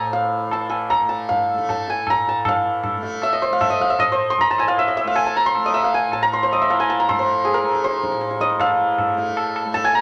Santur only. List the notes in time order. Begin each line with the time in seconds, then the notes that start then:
Already playing: C5 D#5 F5 A5
0.13 F5
0.53 A5
0.70 G#5
0.90 A#5
1.09 A5
1.29 F5
1.70 A5
1.90 G#5
2.10 A#5
2.29 A5
2.48 F5
3.23 E5
3.33 D#5
3.42 C5
3.53 F5
3.61 E5
3.70 D#5
3.81 F5
3.90 E5
4.00 D#5
4.12 C5
4.30 C6
4.41 A#5
4.51 A5
4.59 G#5
4.68 F5
4.79 E5
4.88 D#5
4.97 E5
5.07 F5
5.16 G#5
5.26 A5
5.37 A#5
5.46 C6
5.66 D#5
5.74 E5
5.84 F5
5.94 G#5
6.13 A5
6.23 A#5
6.33 C6
6.43 C5
6.53 D#5
6.62 E5
6.70 F5
6.80 G#5
6.90 A5
7.00 A#5
7.09 C6
7.19 C5
7.45 G#4
7.54 A#4
7.84 C5
8.41 D#5
8.60 F5
9.74 A5
9.84 G#5
9.95 A#5